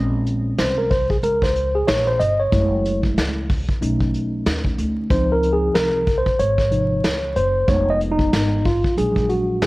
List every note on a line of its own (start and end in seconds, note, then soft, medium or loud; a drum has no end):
0.00 0.55 A#1 loud
0.00 0.86 G#3 medium
0.00 0.87 C4 soft
0.00 0.87 C#4 medium
0.26 closed hi-hat medium
0.58 1.20 C2 medium
0.58 0.79 C5 medium
0.58 snare medium
0.58 closed hi-hat medium
0.78 0.91 A#4 medium
0.90 1.09 C5 medium
0.90 kick loud
0.90 open hi-hat medium
1.10 1.16 G#4 medium
1.10 kick medium
1.23 1.84 C#2 medium
1.23 1.44 A#4 medium
1.23 closed hi-hat loud
1.42 1.76 C5 medium
1.42 kick medium
1.42 snare soft
1.42 closed hi-hat medium
1.56 closed hi-hat medium
1.75 1.88 G#4 medium
1.88 2.18 A#1 medium
1.88 2.08 C#5 medium
1.88 snare loud
1.88 closed hi-hat medium
2.07 2.20 C5 medium
2.20 2.51 G1 loud
2.20 2.40 D#5 loud
2.20 closed hi-hat medium
2.40 3.00 C#5 medium
2.52 3.13 F#1 medium
2.52 3.45 G#3 medium
2.52 3.45 A3 soft
2.52 3.45 E4 medium
2.52 kick loud
2.52 closed hi-hat loud
2.85 closed hi-hat medium
3.03 kick medium
3.17 3.66 C#2 medium
3.17 snare loud
3.17 closed hi-hat medium
3.49 kick loud
3.49 open hi-hat medium
3.69 muted upright bass stroke soft
3.69 kick medium
3.69 closed hi-hat medium
3.81 4.43 B1 medium
3.81 5.06 A3 medium
3.81 5.06 C#4 medium
3.81 5.07 D#4 medium
3.81 closed hi-hat loud
4.01 kick medium
4.14 closed hi-hat medium
4.46 4.76 D#2 medium
4.46 snare loud
4.46 closed hi-hat medium
4.65 kick medium
4.78 5.09 D2 loud
4.78 closed hi-hat medium
5.10 5.72 C#2 loud
5.10 6.03 F3 medium
5.10 6.03 C4 soft
5.10 6.03 D#4 medium
5.10 5.32 C5 medium
5.10 kick loud
5.10 closed hi-hat loud
5.32 5.54 A#4 medium
5.43 closed hi-hat medium
5.53 5.75 G#4 medium
5.75 6.24 C2 medium
5.75 6.19 A#4 medium
5.75 snare loud
5.75 closed hi-hat medium
6.07 kick medium
6.07 closed hi-hat medium
6.18 6.40 C5 medium
6.26 muted upright bass stroke soft
6.26 kick medium
6.26 closed hi-hat medium
6.39 7.01 G#1 medium
6.39 7.39 C#5 loud
6.39 closed hi-hat loud
6.58 kick medium
6.58 snare soft
6.58 closed hi-hat medium
6.71 7.00 C3 soft
6.71 7.00 F3 soft
6.71 7.01 D#4 medium
6.71 closed hi-hat medium
7.04 7.34 C#2 medium
7.04 snare loud
7.04 closed hi-hat medium
7.36 7.67 F#1 medium
7.36 7.69 C5 loud
7.36 closed hi-hat medium
7.68 8.29 F1 loud
7.68 8.61 G#3 medium
7.68 8.61 B3 medium
7.68 8.10 D#4 medium
7.68 7.91 C#5 loud
7.68 kick loud
7.68 closed hi-hat loud
7.90 8.00 D#5 loud
8.01 closed hi-hat medium
8.11 8.67 D#4 loud
8.19 kick loud
8.32 8.82 G#1 medium
8.32 snare loud
8.32 closed hi-hat medium
8.64 8.95 F4 medium
8.64 kick medium
8.64 open hi-hat medium
8.84 muted upright bass stroke soft
8.84 kick medium
8.96 9.59 A#1 loud
8.96 9.66 F#3 medium
8.96 9.66 G#3 soft
8.96 9.66 D4 medium
8.96 9.31 G#4 medium
8.96 closed hi-hat loud
9.16 kick medium
9.16 closed hi-hat medium
9.29 9.63 F#4 medium
9.29 closed hi-hat medium
9.62 9.66 F#2 medium
9.62 9.66 G#4 medium
9.62 snare loud
9.62 closed hi-hat medium